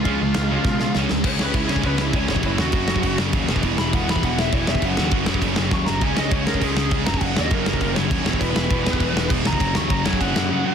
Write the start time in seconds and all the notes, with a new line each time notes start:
Already playing: F4 F5
0.05 C#2 C#3 G#3 C#4, kick, ride
0.20 C#2 C#3 G#3
0.34 C#2 C#3 G#3, snare, ride
0.50 C#3 G#3 C#4
0.64 B2 C#3 G#3, kick, snare
0.79 C#3 G#3, snare
0.84 G#3
0.95 C#2 C#3 G#3 C#4, snare
1.09 C#2 C#3 G#3, snare
1.24 C#2 C#3 G#3 C#4 C#5, kick, crash
1.38 C#2 C#3 G#3 C#4, snare
1.43 B4
1.53 C#2 C#3 G#3 C#4 E4, kick, crash
1.69 C#3 G#3 C#4 C#5, snare
1.76 kick
1.83 C#2 C#3 G#3 C#4 B4, kick, crash
1.98 C#3 G#3 C#4 E4, snare
2.13 C#2 C#3 G#3 C#4 C#5, kick, crash
2.28 F#1 F#2 C#3 F#3 C#5, snare
2.36 kick
2.43 F#1 F#2 C#3 F#3 E4, kick, crash
2.58 D#2 F#2 C#3 F#3 F#4, snare
2.72 F#1 F#2 C#3 F#3, kick, crash
2.88 F#2 C#3 F#3, snare
2.96 kick
3.03 F#1 F#2 C#3 F#3, kick, crash
3.18 F#1 F#2 C#3 F#3, snare
3.33 D#2 F#2 C#3 F#3, kick, crash
3.49 E1 E2 B2 E3, snare
3.56 kick
3.63 E1 E2 B2 E3, kick, crash
3.77 E1 E2 B2 E3 B5, snare
3.93 E1 E2 B2 E3 F#5, kick, crash
4.07 E2 B2 E3 B5, snare
4.16 kick
4.22 E1 E2 B2 E3 F#5, kick, crash
4.37 E2 B2 E3 E5, snare
4.42 E3
4.52 E1 E2 B2 E3 C#5, kick, crash
4.67 F1 E2 B2 E3 E5, snare
4.75 kick
4.82 F#1 F#2 C#3 F#3 F#5, kick, crash
4.97 D#2 F#2 C#3 F#3, snare
5.11 F#1 F#2 C#3 F#3, kick, crash
5.26 F#2 C#3 F#3, snare
5.34 kick
5.42 F#1 F#2 C#3 F#3, kick, crash
5.56 F#1 F#2 C#3 F#3, snare
5.71 D#2 F#2 C#3 F#3 C#6, kick, snare
5.86 F#1 F#2 C#3 F#3 A#5, snare
6.01 C#2 C#3 G#3 C#4 G#5, kick, crash
6.16 C#2 C#3 G#3 C#4 D#5, snare
6.31 C#2 C#3 G#3 C#4 C#5, kick, crash
6.46 C#3 G#3 C#4 A#4, snare
6.54 kick
6.61 C#2 C#3 G#3 C#4 G#4, kick, crash
6.76 C#3 G#3 C#4, snare
6.91 C#2 C#3 G#3 C#4, kick, crash
7.06 F#1 F#2 C#3 F#3 A#5, snare
7.14 kick
7.21 F#1 F#2 C#3 F#3 F#5, kick, crash
7.36 D#2 F#2 C#3 F#3 D#5, snare
7.51 F#1 F#2 C#3 F#3 A#4, kick, crash
7.66 F#2 C#3 F#3, snare
7.73 kick
7.81 F#1 F#2 C#3 F#3, kick, crash
7.95 F#1 F#2 C#3 F#3 C#5, snare
8.11 D#2 F#2 C#3 F#3, kick, crash
8.26 E1 E2 B2 E3, snare
8.33 kick
8.41 E1 E2 B2 E3 B4, kick, crash
8.56 E1 E2 B2 E3, snare
8.71 E1 E2 B2 E3, kick, crash
8.86 E2 B2 E3, snare
8.93 kick
9.00 E1 E2 B2 E3, kick, crash
9.14 E2 B2 E3, snare
9.30 E1 E2 B2 E3, kick, crash
9.45 C#2 E2 B2 E3 A#5, snare
9.53 kick
9.60 F#1 F#2 C#3 F#3, kick, crash
9.75 D#2 F#2 C#3 F#3 C#6, snare
9.89 F#1 F#2 C#3 F#3 A#5, kick, crash
10.04 F#2 C#3 F#3 G#5, snare
10.13 kick
10.19 F#1 F#2 C#3 F#3 F#5, kick, crash
10.35 F#1 F#2 C#3 F#3, snare
10.50 F#2 C#3 F#3
10.65 F#2 C#3 F#3